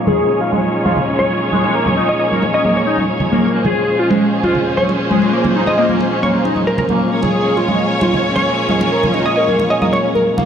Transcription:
Already playing: tonewheel organ A#2 F3 G#3 D#4, string section C#4 F4 G#4 C#5
0.07 analog synth lead G#4, muted conga, high conga, low conga
0.40 analog synth lead F4, muted conga
0.52 analog synth lead G#3, high conga
0.85 analog synth lead F4, muted conga, high conga
0.97 low conga
1.19 synth pluck C#5, muted conga, high conga
1.52 analog synth lead G#3, high conga
1.64 muted conga
1.75 analog synth lead A#3
1.86 high conga, low conga
1.97 analog synth lead D#4, muted conga
2.09 synth pluck D#5
2.19 analog synth lead A#3, synth pluck D#5
2.31 analog synth lead A#3, high conga
2.42 muted conga
2.53 analog synth lead C#4, synth pluck D#5
2.64 analog synth lead A#3, synth pluck D#5, high conga
2.76 analog synth lead A#3, synth pluck C#5, muted conga
2.87 analog synth lead D#4
2.98 high conga
3.20 muted conga, low conga
3.31 analog synth lead A#3, high conga
3.54 analog synth lead A#3, string section C#4 F4 G#4 C5, tonewheel organ C#4
3.65 analog synth lead G#4, muted conga, high conga, low conga
3.99 analog synth lead F4
4.10 analog synth lead G#3, muted conga, high conga
4.43 analog synth lead F4, muted conga, high conga
4.55 low conga
4.77 synth pluck C#5, high conga
4.89 muted conga
5.11 analog synth lead G#3, high conga
5.22 muted conga
5.33 analog synth lead A#3
5.44 high conga, low conga
5.56 analog synth lead D#4
5.67 synth pluck D#5, muted conga
5.78 analog synth lead A#3, synth pluck D#5
5.89 analog synth lead A#3, high conga
6.00 muted conga
6.11 analog synth lead C#4
6.22 analog synth lead A#3, synth pluck C#5, high conga
6.34 analog synth lead A#3
6.45 analog synth lead D#4, muted conga
6.56 high conga
6.67 synth pluck A#4
6.78 synth pluck A#4, muted conga, low conga
6.89 analog synth lead A#3, high conga
7.12 tonewheel organ A#3, analog synth lead A#3, string section C#4 F4 G#4 C#5
7.22 analog synth lead G#4, muted conga, high conga, low conga
7.57 analog synth lead F4, muted conga
7.68 analog synth lead G#3, high conga
8.01 analog synth lead F4, muted conga, high conga
8.14 low conga
8.36 synth pluck C#5, muted conga, high conga
8.69 analog synth lead G#3, high conga
8.81 muted conga
8.92 analog synth lead A#3
9.03 high conga, low conga
9.14 analog synth lead D#4, muted conga
9.26 synth pluck D#5
9.36 analog synth lead A#3, synth pluck D#5
9.48 analog synth lead A#3, high conga
9.59 muted conga
9.70 analog synth lead C#4, synth pluck D#5
9.81 analog synth lead A#3, synth pluck D#5, high conga
9.93 analog synth lead A#3, synth pluck C#5, muted conga
10.03 analog synth lead C#4
10.15 analog synth lead A#4, high conga
10.37 analog synth lead A#3, muted conga, low conga

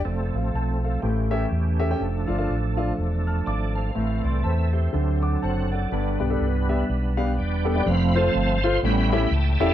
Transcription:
0.05 fingered electric bass F1, tonewheel organ F3 A3 C4 A4
0.34 fingered electric bass A1, grand piano A4 F5
0.54 fingered electric bass B1, grand piano C5 A5
0.84 grand piano A4 F5
1.02 fingered electric bass A1, grand piano A2, tonewheel organ E3 A3 C4 G4
1.08 tonewheel organ C#4
1.31 grand piano C#4 G4 A4 E5
1.51 fingered electric bass E2
1.79 grand piano C#4 G4 A4 E5
1.90 grand piano C#4 G4 A4 G5
1.99 fingered electric bass F1, tonewheel organ F3 A3 D4 A4
2.27 fingered electric bass G1, grand piano D4 F4 A4 F5
2.38 grand piano D4 F4 A4 F5
2.49 fingered electric bass A1
2.77 grand piano D4 F4 A4 F5
2.98 fingered electric bass E1
3.27 grand piano A5 F6
3.46 fingered electric bass G#1, tonewheel organ D5, grand piano F5 D6
3.75 grand piano C5 A5, tonewheel organ F5
3.95 fingered electric bass A1, grand piano A2, tonewheel organ E3 A3 C4 A4
4.23 fingered electric bass C2, tonewheel organ D5, grand piano E5 C6
4.43 fingered electric bass E2, grand piano C5 A5, tonewheel organ E5
4.73 grand piano G4 E5, tonewheel organ C5
4.93 fingered electric bass D2, grand piano D3, tonewheel organ F3 C4 D4 A4
5.01 tonewheel organ F#3
5.23 grand piano F#5 D6
5.42 fingered electric bass F#1, grand piano C5 A5, tonewheel organ F#5
5.72 grand piano A4 F#5, tonewheel organ D5
5.92 fingered electric bass G1, grand piano G2, tonewheel organ G3 B3 D4 B4
6.20 fingered electric bass B1, grand piano B3 D4 G4 D5
6.30 grand piano B3 D4 G4 A4
6.41 fingered electric bass C2
6.69 grand piano B3 D4 G4 E5
6.89 fingered electric bass B1
7.17 grand piano B3 D4 G4 F5
7.38 fingered electric bass E1, tonewheel organ B4 D5 G5
7.65 grand piano B3 D4 G4 A4
7.76 grand piano B3 D4 G4 D5
7.86 fingered electric bass F1, tonewheel organ F3 A3 C4 F5 B5
8.15 grand piano F4 A4 C5, tonewheel organ C5 F5 A5
8.35 fingered electric bass G1
8.63 grand piano F4 A4 C5, tonewheel organ C6
8.83 fingered electric bass A1, grand piano A2, tonewheel organ G3 B3 C#4 E5 G5 B5
9.12 grand piano C#4 E4 G4 A4 E5
9.31 fingered electric bass C#2, tonewheel organ A5
9.60 fingered electric bass E1, grand piano C#4 E4 G4 A4 E5, tonewheel organ D5 F5 A5

